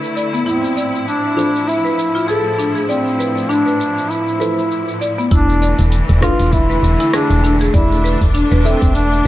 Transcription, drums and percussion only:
0.04 shaker
0.17 shaker
0.34 shaker
0.47 shaker
0.64 shaker
0.78 shaker
0.95 shaker
1.08 shaker
1.38 shaker
1.55 shaker
1.69 shaker
1.86 shaker
1.99 shaker
2.16 shaker
2.29 shaker
2.59 shaker
2.77 shaker
2.90 shaker
3.07 shaker
3.20 shaker
3.37 shaker
3.51 shaker
3.67 shaker
3.81 shaker
3.98 shaker
4.11 shaker
4.28 shaker
4.41 shaker
4.58 shaker
4.72 shaker
4.89 shaker
5.02 shaker
5.19 shaker
5.31 kick, open hi-hat, shaker
5.49 shaker
5.63 shaker
5.79 open hi-hat, shaker
5.92 open hi-hat, shaker
6.09 open hi-hat
6.22 kick, cross-stick, shaker
6.40 open hi-hat, shaker
6.53 kick, open hi-hat, shaker
6.71 shaker
6.84 shaker
7.00 open hi-hat, shaker
7.13 cross-stick, open hi-hat, shaker
7.31 open hi-hat
7.44 shaker
7.61 open hi-hat, shaker
7.74 kick, open hi-hat, shaker
7.92 shaker
8.05 shaker
8.21 kick, open hi-hat, shaker
8.35 open hi-hat, shaker
8.52 open hi-hat
8.66 shaker
8.82 kick, open hi-hat, shaker
8.95 open hi-hat, shaker
9.13 shaker

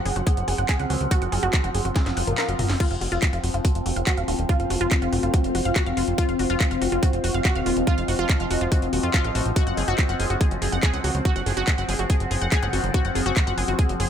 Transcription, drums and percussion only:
0.06 open hi-hat
0.16 closed hi-hat
0.27 kick, closed hi-hat
0.37 closed hi-hat
0.48 open hi-hat
0.58 closed hi-hat
0.69 kick, clap, closed hi-hat
0.80 closed hi-hat
0.90 open hi-hat
1.01 closed hi-hat
1.11 kick, closed hi-hat
1.22 closed hi-hat
1.32 open hi-hat
1.43 closed hi-hat
1.53 kick, clap, closed hi-hat
1.64 closed hi-hat
1.75 open hi-hat
1.85 closed hi-hat
1.96 kick, snare, closed hi-hat
2.06 snare, closed hi-hat
2.17 open hi-hat
2.27 closed hi-hat, mid tom
2.38 snare, clap, closed hi-hat
2.49 closed hi-hat
2.59 mid tom, open hi-hat
2.70 snare, open hi-hat
2.80 kick, closed hi-hat, crash
2.91 closed hi-hat
3.01 open hi-hat
3.12 closed hi-hat
3.22 kick, clap, closed hi-hat
3.33 closed hi-hat
3.44 open hi-hat
3.54 closed hi-hat
3.65 kick, closed hi-hat
3.75 closed hi-hat
3.86 open hi-hat
3.96 closed hi-hat
4.07 kick, clap, closed hi-hat
4.17 closed hi-hat
4.28 open hi-hat
4.39 closed hi-hat
4.49 kick, closed hi-hat
4.60 closed hi-hat
4.70 open hi-hat
4.81 closed hi-hat
4.91 kick, clap, closed hi-hat
5.02 closed hi-hat
5.13 open hi-hat
5.23 closed hi-hat
5.34 kick, closed hi-hat
5.44 closed hi-hat
5.55 open hi-hat
5.65 closed hi-hat
5.76 kick, clap, closed hi-hat
5.86 closed hi-hat
5.97 open hi-hat
6.08 closed hi-hat
6.18 kick, closed hi-hat
6.29 closed hi-hat
6.39 open hi-hat
6.50 closed hi-hat
6.60 kick, clap, closed hi-hat
6.71 closed hi-hat
6.82 open hi-hat
6.92 closed hi-hat
7.03 kick, closed hi-hat
7.13 closed hi-hat
7.24 open hi-hat
7.34 closed hi-hat
7.45 kick, clap, closed hi-hat
7.56 closed hi-hat
7.66 open hi-hat
7.77 closed hi-hat
7.87 kick, closed hi-hat
7.98 closed hi-hat
8.08 open hi-hat
8.19 closed hi-hat
8.29 kick, clap, closed hi-hat
8.40 closed hi-hat
8.51 open hi-hat
8.61 closed hi-hat
8.72 kick, closed hi-hat
8.82 closed hi-hat
8.93 open hi-hat
9.03 closed hi-hat
9.14 kick, clap, closed hi-hat
9.25 closed hi-hat
9.35 open hi-hat
9.46 closed hi-hat
9.56 kick, closed hi-hat
9.67 closed hi-hat
9.77 open hi-hat
9.88 closed hi-hat
9.98 kick, clap, closed hi-hat
10.09 closed hi-hat
10.20 open hi-hat
10.30 closed hi-hat
10.41 kick, closed hi-hat
10.51 closed hi-hat
10.62 open hi-hat
10.72 closed hi-hat
10.83 kick, clap, closed hi-hat
10.94 closed hi-hat
11.04 open hi-hat
11.15 closed hi-hat
11.25 kick, closed hi-hat
11.36 closed hi-hat
11.46 open hi-hat
11.57 closed hi-hat
11.67 kick, clap, closed hi-hat
11.78 closed hi-hat
11.89 open hi-hat
11.99 closed hi-hat
12.10 kick, closed hi-hat
12.20 closed hi-hat
12.31 open hi-hat
12.41 closed hi-hat
12.52 kick, clap, closed hi-hat
12.63 closed hi-hat
12.73 open hi-hat
12.84 closed hi-hat
12.94 kick, closed hi-hat
13.05 closed hi-hat
13.15 open hi-hat
13.26 closed hi-hat
13.36 kick, clap, closed hi-hat
13.47 closed hi-hat
13.58 open hi-hat
13.68 closed hi-hat
13.79 kick, closed hi-hat
13.89 closed hi-hat
14.00 open hi-hat

